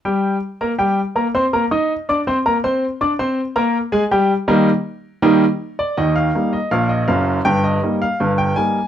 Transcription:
<<
  \new Staff \with { instrumentName = "Grand piano" } { \time 2/4 \key ees \major \tempo 4 = 81 <g g' g''>8. <bes bes' bes''>16 <g g' g''>8 <bes bes' bes''>16 <c' c'' c'''>16 | <bes bes' bes''>16 <ees' ees'' ees'''>8 <d' d'' d'''>16 <c' c'' c'''>16 <bes bes' bes''>16 <c' c'' c'''>8 | <d' d'' d'''>16 <c' c'' c'''>8 <bes bes' bes''>8 <aes aes' aes''>16 <g g' g''>8 | <ees g bes ees'>8 r8 <ees g bes ees'>8 r16 d''16 |
ees''16 f''8 ees''16 f''16 ees''16 f''8 | g''16 ees''8 f''8 g''16 aes''8 | }
  \new Staff \with { instrumentName = "Grand piano" } { \clef bass \time 2/4 \key ees \major r2 | r2 | r2 | r2 |
<ees, ees>8 <g bes ees'>8 <bes,, bes,>8 <ges,, ges,>8 | <g,, g,>8 <g bes ees'>8 <g,, g,>8 <g bes ees'>8 | }
>>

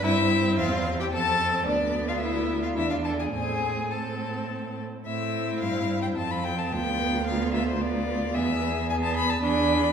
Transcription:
<<
  \new Staff \with { instrumentName = "Violin" } { \time 3/4 \key a \minor \tempo 4 = 109 e''4 f''8. g''16 a''4 | d''8. f''16 e''8. f''16 e''16 f''16 a''16 gis''16 | gis''4 a''4. r8 | e''4 f''8. g''16 a''16 b''16 g''16 a''16 |
g''4 f''8 e''16 c''16 d''4 | e''4 gis''16 a''16 b''16 a''16 b''4 | }
  \new Staff \with { instrumentName = "Violin" } { \time 3/4 \key a \minor e'4 f'8. g'16 a'4 | d'8. f'16 e'8. f'16 e'16 f'16 a'16 gis'16 | gis'4 a'4. r8 | e'2 f'4 |
f'4 f'4 f'4 | gis'4 gis'4 gis'4 | }
  \new Staff \with { instrumentName = "Viola" } { \time 3/4 \key a \minor c'2 c'4 | b2 d'4 | c'4 c'4. r8 | c'2 c'4 |
b4 b4 b4 | b4 b4 d'4 | }
  \new Staff \with { instrumentName = "Cello" } { \clef bass \time 3/4 \key a \minor g,4 e,4 f,4 | d,2 e,4 | a,2~ a,8 r8 | a,4 g,4 f,4 |
d,2. | e,2 e,4 | }
>>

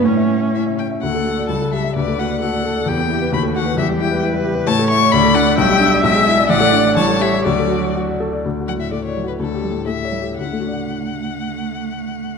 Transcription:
<<
  \new Staff \with { instrumentName = "Violin" } { \time 2/4 \key d \major \tempo 4 = 128 cis''4 e''8 g''8 | fis''4 a''8 e''8 | d''8 fis''8 fis''4 | g''4 b''8 fis''8 |
e''8 g''8 r4 | a''8 cis'''8 b''8 fis''8 | g''4 e''4 | fis''4 a''8 e''8 |
d''4 r4 | r8 fis''16 e''16 d''16 cis''8 b'16 | a'4 e''4 | fis''2~ |
fis''2 | }
  \new Staff \with { instrumentName = "Viola" } { \time 2/4 \key d \major cis'4. r8 | a'2 | b'4 a'4 | g'4 fis'4 |
g'4 b'4 | cis''4 d''4 | e''2 | d''4 cis''4 |
fis'4. r8 | r2 | r2 | r2 |
r2 | }
  \new Staff \with { instrumentName = "Grand piano" } { \time 2/4 \key d \major a,16 e''16 cis'16 e''16 e'16 e''16 cis'16 e''16 | d,16 a'16 fis'16 d''16 cis,16 a'16 g'16 e''16 | d,16 a'16 fis'16 d''16 fis'16 d''16 a'16 d''16 | e,16 g'16 e'16 b'16 dis,16 a'16 fis'16 b'16 |
e,16 g'16 e'16 b'16 e'16 b'16 g'16 b'16 | a,16 a'16 e'16 cis''16 d,16 a'16 d'16 d''16 | b,,16 g'16 d'16 d''16 b,,16 gis'16 e'16 d''16 | a,,16 a'16 d'16 d''16 a,,16 a'16 g'16 cis''16 |
d,16 a'16 fis'16 d''16 fis'16 d''16 a'16 d''16 | \tuplet 3/2 { d,8 fis'8 a,8 a8 d''8 fis'8 } | \tuplet 3/2 { d,8 g'8 a,8 a8 cis''8 g'8 } | <d, d a fis' d'' fis''>2~ |
<d, d a fis' d'' fis''>2 | }
  \new Staff \with { instrumentName = "Cello" } { \clef bass \time 2/4 \key d \major a4 r4 | a4 g4 | a2 | b4 a4 |
g2 | a2 | g4 gis4 | a4 g4 |
fis4. r8 | r8 fis8 r8 fis8 | r8 g8 r8 g8 | a2~ |
a2 | }
>>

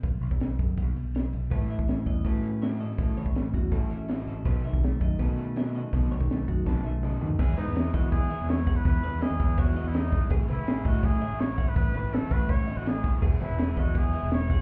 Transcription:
<<
  \new Staff \with { instrumentName = "Clean electric guitar" } { \time 4/4 \key a \lydian \tempo 4 = 164 r1 | b'8 e''4 dis''8 b'4 e''8 dis''8~ | dis''8 cis''4 fis'8 a'8 e''8 dis''4 | b'8 e''4 dis''8 b'4 e''8 dis''8~ |
dis''8 cis''4 fis'8 a'8 e''8 dis''4 | gis'8 b'8 gis'8 dis''4 e''4 fis''8~ | fis''8 b'8 dis''8 b'8 cis''8 dis''4 r8 | gis'8 b'8 gis'8 dis''4 e''4 fis''8~ |
fis''8 b'8 cis''8 b'8 cis''8 dis''4 r8 | gis'8 b'8 gis'8 dis''4 e''4 fis''8 | }
  \new Staff \with { instrumentName = "Trumpet" } { \time 4/4 \key a \lydian r1 | r1 | r1 | r1 |
r1 | r8 dis'4 fis'8 gis'4 cis''8. b'16 | b'4 gis'4 fis'8. e'16 dis'8. r16 | r8 e'4 fis'8 gis'4 cis''8. b'16 |
b'8 b'8 a'8 b'8 cis''8. fis'16 gis'8. r16 | r8 e'4 fis'8 gis'4 cis''8. r16 | }
  \new Staff \with { instrumentName = "Overdriven electric guitar" } { \time 4/4 \key a \lydian r1 | <a cis' e' a'>8 r4. <a cis' e' a'>8 r8 <a cis' e' a'>8 r8 | <a cis' e' a'>8 r4. <a cis' e' a'>8 r8 <a cis' e' a'>8 r8 | <fis b dis' a'>8 r4. <fis b dis' a'>8 r8 <fis b dis' a'>8 r8 |
<fis b dis' a'>8 r4. <fis b dis' a'>8 r8 <fis b dis' a'>8 r8 | <e gis b e'>8 <gis b e'>8 <e gis b e'>8 <e gis b e'>8 <e gis b e'>8 <gis b e'>8 <e gis b e'>8 <gis b e'>8 | <e gis b e'>8 <gis b e'>8 <e gis b e'>8 <e gis b e'>8 <e gis b e'>8 <gis b e'>8 <e gis b e'>8 <gis b e'>8 | <a, e a cis' e'>8 <a cis' e'>8 <e a cis' e'>8 <a, e a cis' e'>8 <e a cis' e'>8 <a cis' e'>8 <a, e a cis' e'>8 <a cis' e'>8 |
<a, e a cis' e'>8 <a cis' e'>8 <e a cis' e'>8 <a, e a cis' e'>8 <e a cis' e'>8 <a cis' e'>8 <a, e a cis' e'>8 <a cis' e'>8 | <e gis b e'>8 <gis b e'>8 <e gis b e'>8 <e gis b e'>8 <e gis b e'>8 <gis b e'>8 <e gis b e'>8 <gis b e'>8 | }
  \new Staff \with { instrumentName = "Clean electric guitar" } { \time 4/4 \key a \lydian << { r1 | r4 cis'4 fis'8 cis'8 fis'8 a'8 | r4 cis'4 fis'8 cis'8 fis'8 a'8 | r4 a4 cis'8 a8 cis'8 fis'8~ |
fis'4 a4 cis'8 a4. | r1 | r1 | r1 |
r1 | r1 | } \\ { r1 | a,8 e4 e2~ e8 | a,8 e4 e2~ e8 | b,8 dis4 dis2~ dis8 |
b,8 dis4 dis4. cis8 dis8 | r1 | r1 | r1 |
r1 | r1 | } >> }
  \new Staff \with { instrumentName = "Fingered electric bass" } { \clef bass \time 4/4 \key a \lydian b,,8 b,,16 b,,8. fis,8 b,,8 b,,4 b,,8 | a,,8 r16 a,,8. e,8 a,2 | a,,8 a,,16 a,,8. e,8 a,,8 a,,4 a,,8 | b,,8 r16 b,,8. fis,8 b,2 |
b,,8 b,,16 b,,8. fis,8 b,,8 b,,4 dis,8 | e,8 gis,16 e,8. e4~ e16 e,4~ e,16 | e,8 e,16 e,16 r16 e,16 e,4~ e,16 e,4~ e,16 | a,,8 cis,16 a,,8. a,4~ a,16 a,,4~ a,,16 |
a,,8 a,,16 a,,16 r16 a,,16 a,,4~ a,,16 a,,4~ a,,16 | e,,8 gis,,16 e,,8. e,4~ e,16 e,,4~ e,,16 | }
  \new DrumStaff \with { instrumentName = "Drums" } \drummode { \time 4/4 <bd cymr>8 cymr16 bd16 <cymr sn>8 <bd cymr>8 <bd cymr>8 cymr8 <cymr sn>8 cymr8 | <bd cymr>8 cymr16 bd16 <cymr sn>8 <bd cymr>8 <bd cymr>8 cymr8 <cymr sn>8 cymr16 sn16 | <bd cymr>8 cymr16 bd16 <cymr sn>8 <bd cymr>8 <bd cymr>8 cymr8 <cymr sn>8 <cymr sn>8 | <bd cymr>8 cymr16 <bd sn>16 <cymr sn>8 <bd cymr>8 <bd cymr>8 cymr8 <cymr sn>8 cymr8 |
<bd cymr>8 cymr16 bd16 <cymr sn>16 sn16 <bd cymr>8 <bd sn>4 toml8 tomfh8 | <cymc bd>8 cymr8 <cymr sn>8 <bd cymr>8 <bd cymr>8 cymr8 <cymr sn>8 <bd cymr>8 | <bd cymr>8 cymr8 <cymr sn>8 <bd cymr>8 <bd cymr>8 cymr8 <cymr sn>8 <bd cymr>8 | <bd cymr>8 cymr8 <cymr sn>8 <bd cymr>8 <bd cymr>8 cymr8 <cymr sn>8 <bd cymr>8 |
<bd cymr>8 cymr8 <cymr sn>8 <bd cymr>8 <bd cymr>8 cymr8 <cymr sn>8 <bd cymr>8 | <cymc bd>8 cymr8 <cymr sn>8 <bd cymr>8 <bd cymr>8 cymr8 <cymr sn>8 <bd cymr>8 | }
>>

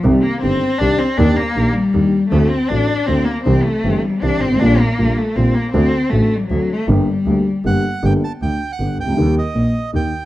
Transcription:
<<
  \new Staff \with { instrumentName = "Bandoneon" } { \time 3/4 \key g \minor \tempo 4 = 158 r2. | r2. | r2. | r2. |
r2. | r2. | r2 fis''4 | g''8 a''8 g''8. fis''8. g''8~ |
g''8 ees''4. g''4 | }
  \new Staff \with { instrumentName = "Cello" } { \time 3/4 \key g \minor g8 bes8 c'4 d'8 c'8 | d'8 bes4 g4. | a8 c'8 d'4 c'8 bes8 | c'8 a4 g8 d'8 c'8 |
d'8 bes4 a8 c'8 bes8 | c'4 \tuplet 3/2 { a4 g8 fis4 a8 } | g2~ g8 r8 | r2. |
r2. | }
  \new Staff \with { instrumentName = "Upright piano" } { \clef bass \time 3/4 \key g \minor <c, c ees g c' g'>8 r8 <g,, g, ees g c' g'>8 r8 <c, c ees g c' g'>8 r8 | <ees, ees bes d' g'>8 r8 <bes,, bes, ees bes d' g'>8 r8 <ees, ees bes d' g'>8 r8 | <d, d a c' fis'>8 r8 <a,, a, d a c' fis'>8 r8 <d, d a c' fis'>8 r8 | <c, c e g c' g'>8 r8 <g,, g, e g c' g'>8 r8 <c, c e g c' g'>8 r32 g,,32 aes,,32 a,,32 |
<bes,, bes, d g bes f'>8 r8 <bes,, bes, d g bes f'>8 r8 <bes,, bes, d g bes f'>8 r8 | <d, d a c' fis'>8 r8 <a,, a, d a c' fis'>8 r8 <d, d a c' fis'>8 r8 | <g,, g, d g bes g'>8 r8 <d, d g bes g'>8 r8 <g,, g, d g bes g'>8 r8 | <g,, g, d g bes g'>8 r8 <d, d>8 r8 <g,, g,>8 r32 c,32 cis,32 d,32 |
<ees, ees g bes g'>8 r8 <bes,, bes,>8 r8 <ees, ees>8 r8 | }
  \new Staff \with { instrumentName = "Double bass" } { \clef bass \time 3/4 \key g \minor c,8 r8 g,,8 r8 c,8 r8 | ees,8 r8 bes,,8 r8 ees,8 r8 | d,8 r8 a,,8 r8 d,8 r8 | c,8 r8 g,,8 r8 c,8 aes,,8 |
bes,,8 r8 bes,,8 r8 bes,,8 r8 | d,8 r8 a,,8 r8 d,8 r8 | g,,8 r8 d,8 r8 g,,8 r8 | g,,8 r8 d,8 r8 g,,8 cis,8 |
ees,8 r8 bes,,8 r8 ees,8 r8 | }
>>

